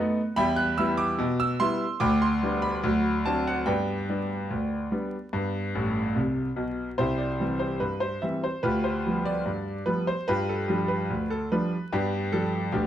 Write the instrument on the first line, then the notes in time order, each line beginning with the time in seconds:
grand piano
Already playing: A3 B3 D#4 B4 D#5 F#5
0.36 E2 G3 E5 G5 B5
0.56 F#6
0.78 G3 B3 E4 E6
0.98 D6
1.19 B2
1.40 E6
1.60 G3 B3 E4 C6
2.00 D2 G5 B5 D6
2.22 C6
2.43 G3 B3 D4
2.62 B5
2.84 D2 F#3
3.25 F#3 C4 D4 A5
3.47 F#5
3.66 G2 B3 B4 D5 G5
4.09 G3 B3 D4
4.51 D2
4.91 G3 B3 D4
5.33 G2 B3
5.75 A1 A2
6.16 C2 C3
6.56 B1 B2
6.98 C2 E4 G4 C5
7.18 D5
7.40 E3 G3 C4
7.59 C5
7.80 G2 B4
8.00 C5
8.22 E3 G3 C4 E5
8.44 C5
8.63 D2 F4 G4 B4
8.84 C5
9.06 F3 G3 B3
9.25 D5
9.46 G2
9.86 F3 G3 B3 B4
10.07 C5
10.28 G2 F4 G4 B4
10.49 A4
10.68 F3 G3 D4 G4
10.88 B4
11.10 D2
11.30 A4
11.52 F3 G3 D4 B4
11.92 G2 B3 D4 G4
12.32 F3 G3 D4 A4
12.72 D2 B3 D4 G4